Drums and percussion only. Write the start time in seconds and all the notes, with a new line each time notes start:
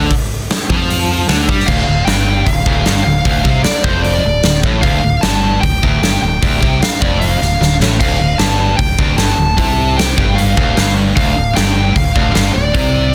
0.10 kick, open hi-hat
0.51 snare
0.70 kick
0.90 open hi-hat
1.29 snare, open hi-hat
1.49 kick
1.60 snare
1.68 kick, crash
2.07 snare, open hi-hat
2.47 kick, open hi-hat
2.66 kick
2.85 snare, open hi-hat
3.25 kick, open hi-hat
3.45 kick
3.64 snare, open hi-hat
3.84 kick
4.04 open hi-hat
4.43 snare, open hi-hat
4.63 kick
4.83 kick, open hi-hat
5.23 snare, open hi-hat
5.63 kick, open hi-hat
5.83 kick
6.03 snare, open hi-hat
6.43 kick, open hi-hat
6.63 kick
6.82 snare, open hi-hat
7.02 kick
7.21 open hi-hat
7.42 snare
7.62 snare
7.82 snare
8.01 kick, open hi-hat, crash
8.39 snare, open hi-hat
8.79 kick, open hi-hat
8.99 kick
9.18 snare, open hi-hat
9.58 kick, open hi-hat
9.99 snare, open hi-hat
10.18 kick
10.38 open hi-hat
10.57 kick
10.77 snare, open hi-hat
11.17 kick, open hi-hat
11.56 snare, open hi-hat
11.96 kick, open hi-hat
12.16 kick
12.35 snare, open hi-hat
12.74 kick, open hi-hat